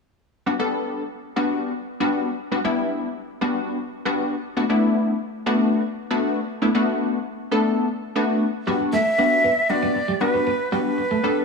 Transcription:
0.46 0.54 G3 medium
0.46 0.54 B3 medium
0.46 0.54 D4 medium
0.46 0.54 F#4 medium
0.59 1.03 G3 medium
0.59 1.03 B3 medium
0.59 1.03 D4 medium
0.59 1.03 A4 loud
1.36 1.73 G3 medium
1.36 1.73 B3 medium
1.36 1.73 D4 medium
1.36 1.73 F#4 loud
2.00 2.29 G3 medium
2.00 2.30 B3 medium
2.00 2.30 D4 medium
2.00 2.30 F#4 loud
2.51 2.59 G3 medium
2.51 2.59 B3 medium
2.51 2.59 D4 medium
2.51 2.59 F#4 loud
2.64 3.08 G3 medium
2.64 3.08 B3 medium
2.64 3.08 D4 medium
2.64 3.08 E4 loud
3.41 3.78 G3 medium
3.41 3.78 B3 medium
3.41 3.78 D4 medium
3.41 3.78 F#4 loud
4.05 4.35 G3 medium
4.05 4.35 B3 medium
4.05 4.35 D4 medium
4.05 4.35 F#4 loud
4.57 4.64 A3 medium
4.57 4.64 B3 medium
4.57 4.64 D4 medium
4.57 4.64 F#4 loud
4.69 5.13 A3 medium
4.69 5.13 B3 medium
4.69 5.13 D4 medium
4.69 5.13 E4 medium
5.46 5.83 A3 loud
5.46 5.83 B3 medium
5.46 5.83 D4 medium
5.46 5.83 F#4 loud
6.11 6.40 A3 loud
6.11 6.40 B3 medium
6.11 6.40 D4 medium
6.11 6.40 F#4 loud
6.62 6.69 A3 medium
6.62 6.69 B3 medium
6.62 6.69 D4 medium
6.62 6.69 E4 loud
6.75 7.18 A3 medium
6.75 7.18 B3 medium
6.75 7.19 D4 medium
6.75 7.19 F#4 loud
7.51 7.88 A3 medium
7.51 7.88 B3 medium
7.51 7.88 D4 medium
7.51 7.88 A4 loud
8.15 8.45 A3 medium
8.15 8.45 B3 medium
8.15 8.45 D4 medium
8.15 8.45 F#4 loud
8.67 8.96 G3 medium
8.67 8.75 G3 medium
8.67 8.96 B3 medium
8.67 8.96 D4 medium
8.67 8.96 F#4 loud
8.80 muted clean electric guitar stroke soft
8.93 9.01 A3 medium
8.93 9.71 E5 loud
9.18 9.47 G3 medium
9.18 9.48 B3 medium
9.18 9.48 D4 medium
9.18 9.48 F#4 medium
9.44 9.52 B3 medium
9.70 9.99 G3 medium
9.70 9.99 B3 medium
9.70 9.99 D4 medium
9.70 9.99 F#4 medium
9.70 10.22 D5 loud
9.83 9.91 B3 medium
9.95 muted clean electric guitar stroke soft
10.08 10.16 G3 medium
10.21 10.50 G3 medium
10.21 10.50 B3 medium
10.21 10.50 D4 medium
10.21 10.50 F#4 medium
10.21 10.72 B4 medium
10.21 muted clean electric guitar stroke soft
10.34 10.42 B3 medium
10.47 10.55 B3 medium
10.72 11.01 G3 medium
10.72 10.80 G3 medium
10.72 11.01 B3 medium
10.72 11.01 D4 medium
10.72 11.02 F#4 medium
10.72 11.45 B4 medium
10.98 muted clean electric guitar stroke soft
11.11 11.19 A3 medium
11.23 11.45 G3 medium
11.23 11.45 B3 medium
11.23 11.45 D4 medium
11.23 11.45 A4 medium
11.23 muted clean electric guitar stroke soft

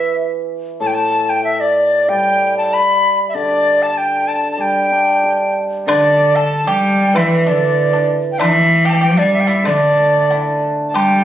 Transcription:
0.00 1.46 E3 soft
0.00 0.17 E5 medium
0.80 2.73 A2 soft
0.80 0.88 A5 medium
0.87 0.96 G5 medium
0.94 1.31 A5 medium
1.29 1.43 G5 medium
1.44 1.62 E5 medium
1.60 2.10 D5 medium
2.08 3.96 G3 medium
2.08 2.57 G5 medium
2.58 2.75 A5 medium
2.73 3.20 B5 medium
3.29 3.36 E5 medium
3.34 5.23 D3 medium
3.34 3.84 D5 medium
3.82 3.99 A5 medium
3.98 4.29 G5 medium
4.28 4.51 A5 medium
4.52 4.62 A5 medium
4.57 6.51 G3 soft
4.57 5.57 G5 medium
4.91 6.20 D4 soft
5.24 6.52 G4 soft
5.87 7.77 D3 medium
5.87 6.64 D3 medium
5.87 6.33 D4 medium
5.87 6.37 D5 medium
5.87 high woodblock medium
6.36 6.66 A4 medium
6.36 6.69 A5 medium
6.67 7.16 G3 medium
6.67 7.12 G4 medium
6.67 7.19 G5 medium
7.14 9.01 E3 medium
7.14 7.50 E3 medium
7.14 7.44 E4 medium
7.14 7.39 E5 medium
7.14 high woodblock medium
7.40 7.49 E5 medium
7.46 8.10 D3 medium
7.46 7.90 D4 medium
7.46 8.10 D5 medium
7.93 8.08 D4 medium
8.32 8.40 G5 medium
8.38 9.04 E3 medium
8.38 8.83 E4 medium
8.38 8.87 E5 loud
8.38 high woodblock medium
8.85 8.92 G4 medium
8.85 8.91 G5 medium
8.89 9.00 G4 medium
8.89 8.96 A5 medium
8.95 9.02 G5 medium
9.01 9.67 G3 medium
9.01 9.16 G4 medium
9.01 9.19 G5 medium
9.17 9.45 D4 medium
9.17 9.33 D5 medium
9.34 9.42 E5 medium
9.40 9.49 G5 medium
9.47 9.64 E4 medium
9.47 9.67 E5 medium
9.63 11.24 D3 medium
9.63 10.62 D3 medium
9.63 10.26 D4 medium
9.63 10.62 D5 medium
9.63 high woodblock medium
9.98 11.24 A3 soft
10.30 11.24 D4 soft
10.30 10.60 E4 medium
10.30 low woodblock soft
10.88 10.98 A5 medium
10.93 11.24 G3 medium
10.93 11.24 G4 medium
10.93 11.24 G5 medium
10.93 high woodblock medium

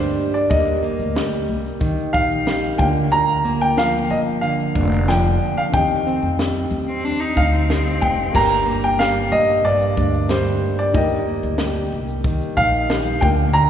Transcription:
0.00 0.14 D2 medium
0.00 0.58 G2 medium
0.00 1.15 G3 medium
0.00 0.46 A#3 medium
0.00 0.82 A#3 medium
0.00 0.57 D4 medium
0.00 0.47 G4 medium
0.00 0.48 A#4 medium
0.00 0.36 C5 medium
0.00 shaker medium
0.17 shaker medium
0.34 0.51 D5 medium
0.34 shaker medium
0.50 0.96 D#2 loud
0.50 2.75 A#3 medium
0.50 2.76 G4 medium
0.50 1.12 D#5 medium
0.50 kick loud
0.50 shaker medium
0.54 2.77 D#5 medium
0.66 shaker medium
0.83 3.45 A#3 medium
0.83 shaker medium
0.99 1.45 D2 medium
0.99 shaker medium
1.15 2.46 G3 medium
1.15 snare loud
1.15 shaker medium
1.33 shaker soft
1.49 1.94 C2 medium
1.65 shaker soft
1.80 2.79 D#3 medium
1.80 kick medium
1.80 shaker medium
1.98 shaker medium
2.13 2.76 A#1 medium
2.13 2.86 D#4 medium
2.13 2.81 F5 medium
2.13 kick medium
2.31 shaker medium
2.46 2.86 G3 medium
2.46 snare loud
2.46 shaker medium
2.63 shaker medium
2.78 4.06 D2 medium
2.78 3.12 D3 medium
2.78 5.36 A#3 medium
2.78 5.37 F4 medium
2.78 2.86 G5 medium
2.78 kick loud
2.82 5.38 F5 medium
2.95 shaker medium
3.12 4.42 D3 medium
3.12 3.62 A#5 loud
3.12 shaker medium
3.28 shaker soft
3.45 5.80 A#3 medium
3.61 3.78 G5 medium
3.61 shaker medium
3.77 5.07 F3 medium
3.77 4.11 F5 medium
3.77 snare loud
3.77 shaker medium
3.94 shaker soft
4.09 4.71 G1 medium
4.09 4.18 D#5 medium
4.09 shaker soft
4.27 shaker soft
4.41 5.72 D3 medium
4.41 5.09 F5 medium
4.41 shaker medium
4.59 shaker soft
4.75 5.37 F1 loud
4.75 5.80 D4 medium
4.75 kick medium
4.92 shaker medium
5.07 5.80 F3 medium
5.07 5.59 G5 medium
5.07 snare loud
5.07 shaker medium
5.25 shaker soft
5.58 5.63 F5 medium
5.58 shaker medium
5.72 6.19 D#2 loud
5.72 7.03 D#3 medium
5.72 8.30 C4 medium
5.72 8.31 G4 medium
5.72 6.35 G5 medium
5.72 kick loud
5.72 shaker medium
5.76 8.32 D#5 medium
5.90 shaker medium
6.07 8.41 C4 medium
6.07 shaker medium
6.22 6.68 F2 medium
6.22 shaker medium
6.39 7.69 G3 medium
6.39 snare loud
6.39 shaker medium
6.56 shaker soft
6.71 7.16 D#2 medium
6.71 shaker medium
6.88 7.05 C4 medium
6.88 shaker soft
7.04 7.22 D4 medium
7.04 shaker medium
7.20 7.51 D#4 medium
7.20 shaker medium
7.36 7.98 D2 loud
7.36 8.41 D#4 medium
7.36 8.04 F5 medium
7.36 kick medium
7.53 8.31 C4 medium
7.53 shaker soft
7.69 8.99 G3 medium
7.69 snare loud
7.69 shaker medium
7.86 shaker soft
8.01 8.32 F1 medium
8.01 8.35 G5 medium
8.01 kick medium
8.01 shaker medium
8.18 shaker medium
8.32 9.28 G1 loud
8.32 9.63 G2 medium
8.32 10.90 A#3 medium
8.32 10.90 G4 medium
8.32 10.91 A#4 medium
8.32 8.85 A#5 loud
8.32 kick medium
8.32 crash medium
8.36 10.92 G5 medium
8.51 shaker soft
8.66 11.27 A#3 medium
8.66 shaker medium
8.84 9.00 G5 medium
8.84 shaker medium
8.99 10.30 G3 medium
8.99 9.33 F5 medium
8.99 snare loud
8.99 shaker medium
9.17 shaker soft
9.31 9.93 A#1 medium
9.31 9.66 D#5 loud
9.31 shaker medium
9.49 shaker soft
9.64 11.01 G2 loud
9.64 10.32 D5 medium
9.64 shaker medium
9.81 shaker medium
9.97 10.58 D2 medium
9.97 11.01 D4 medium
9.97 kick medium
9.97 shaker soft
10.13 shaker medium
10.28 11.59 G3 medium
10.28 10.80 C5 medium
10.28 snare loud
10.28 shaker medium
10.45 shaker medium
10.78 10.96 D5 medium
10.78 shaker medium
10.93 11.40 D#2 loud
10.93 13.18 D#4 medium
10.93 13.19 G4 medium
10.93 13.19 A#4 medium
10.93 11.56 D#5 medium
10.93 kick loud
10.93 shaker medium
10.97 13.20 G5 medium
11.09 shaker medium
11.27 13.70 A#3 medium
11.43 11.88 D2 medium
11.43 shaker medium
11.58 12.90 G3 medium
11.58 snare loud
11.58 shaker medium
11.76 shaker soft
11.92 12.37 C2 medium
12.08 shaker soft
12.23 13.22 D#3 medium
12.23 kick loud
12.23 shaker medium
12.41 shaker medium
12.57 13.19 A#1 medium
12.57 13.30 D#4 medium
12.57 13.24 F5 loud
12.57 kick medium
12.73 shaker medium
12.89 13.30 G3 medium
12.89 snare loud
12.89 shaker medium
13.05 shaker medium
13.20 13.70 D2 loud
13.20 13.53 D3 medium
13.20 13.70 A#3 medium
13.20 13.70 F4 medium
13.20 13.70 A#4 medium
13.20 13.70 F5 medium
13.20 13.28 G5 medium
13.20 kick loud
13.38 shaker medium
13.53 13.70 D3 medium
13.53 13.70 A#5 loud
13.53 shaker medium

